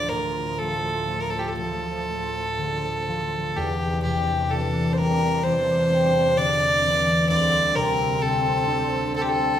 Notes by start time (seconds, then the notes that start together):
Already playing: D2 A2 F3 A3 D5
0.09 A2 A#4
0.58 F3 A4
1.08 A3
1.22 A#4
1.30 A4
1.39 G4
1.48 A4
1.58 F3 A4
2.08 A3
2.58 D3
3.08 F3
3.53 E2 C3 D4 G4
4.03 C3 G4
4.51 E3 A4
4.93 C5
4.98 G3 A#4
5.44 E3 C5
5.90 G3
6.37 D3 D5
6.85 E3
7.28 D2 D3 G3 C4 D5
7.75 C3 A#4
8.21 C4 A4
8.67 D4
9.15 C4 A4
9.22 G4
9.29 A4